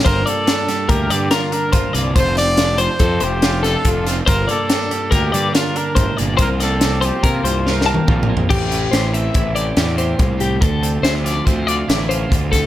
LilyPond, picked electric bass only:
\new Staff \with { instrumentName = "Picked electric bass" } { \clef bass \time 5/4 \key a \phrygian \tempo 4 = 142 g,,8 r4. d,8 g,8 r4 g,,16 r16 c,8 | f,,2 f,8 f,,4. f,,4 | g,,8 r4. d,8 g,8 r4 g,,16 r16 g,,8 | c,2 c8 c,4. bes,,4 |
a,,4 a,,4 a,,4 e,4 c,4 | d,4 d,4 d,4 a,,4 d,4 | }